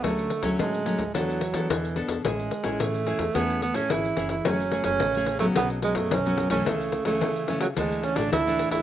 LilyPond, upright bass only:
\new Staff \with { instrumentName = "Upright bass" } { \clef bass \time 4/4 \key a \major \tempo 4 = 109 d,8 r16 d,16 d8. d,16 e,8. e16 e,8. e,16 | a,,8 r16 a,,16 a,8. e,16 e,8. a,16 gis,,8 fis,,8 | \key fis \minor fis,,8. fis,,16 a,,4 b,,8. fis,16 b,,8. b,,16 | cis,8. cis,16 cis4 d,8. a,,16 d,8. d,16 | }